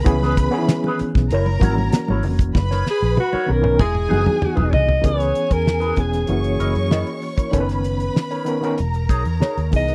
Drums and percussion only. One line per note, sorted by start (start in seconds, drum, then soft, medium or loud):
0.06 kick loud
0.06 closed hi-hat medium
0.06 muted conga soft
0.06 low conga medium
0.21 snare soft
0.21 muted conga soft
0.37 kick medium
0.37 closed hi-hat medium
0.69 snare loud
0.69 closed hi-hat medium
0.69 muted conga soft
0.84 muted conga soft
0.99 closed hi-hat medium
1.15 kick medium
1.15 snare soft
1.31 closed hi-hat medium
1.46 muted conga soft
1.61 kick medium
1.61 closed hi-hat medium
1.61 high conga medium
1.78 high conga medium
1.93 snare loud
1.93 closed hi-hat loud
2.08 high conga medium
2.23 open hi-hat medium
2.23 low conga medium
2.39 kick medium
2.39 closed hi-hat medium
2.55 kick loud
2.55 snare medium
2.55 muted conga soft
2.55 low conga medium
2.71 snare medium
2.86 snare medium
3.17 high tom medium
3.17 muted conga soft
3.33 muted conga soft
3.64 mid tom medium
3.79 kick medium
3.79 mid tom medium
3.79 muted conga soft
3.95 mid tom medium
4.11 high conga medium
4.26 mid tom medium
4.26 high conga medium
4.42 mid tom medium
4.42 muted conga soft
4.57 floor tom medium
4.57 muted conga soft
4.57 high conga medium
4.73 floor tom medium
4.73 low conga medium
4.89 floor tom medium
5.04 kick loud
5.04 closed hi-hat medium
5.20 snare soft
5.20 closed hi-hat medium
5.35 closed hi-hat medium
5.51 kick medium
5.51 closed hi-hat medium
5.67 snare loud
5.81 closed hi-hat soft
5.96 kick medium
5.96 closed hi-hat medium
6.13 snare soft
6.13 closed hi-hat soft
6.27 closed hi-hat medium
6.44 closed hi-hat soft
6.60 closed hi-hat medium
6.75 closed hi-hat soft
6.91 snare loud
7.07 closed hi-hat soft
7.22 open hi-hat medium
7.38 kick medium
7.38 closed hi-hat soft
7.53 kick loud
7.53 closed hi-hat medium
7.69 snare soft
7.69 closed hi-hat soft
7.84 closed hi-hat medium
8.00 closed hi-hat medium
8.16 snare loud
8.31 closed hi-hat soft
8.46 closed hi-hat medium
8.63 closed hi-hat soft
8.78 closed hi-hat medium
8.94 closed hi-hat soft
9.09 kick medium
9.09 closed hi-hat medium
9.25 closed hi-hat soft
9.42 snare medium
9.57 closed hi-hat soft
9.72 kick medium
9.72 open hi-hat medium
9.88 closed hi-hat soft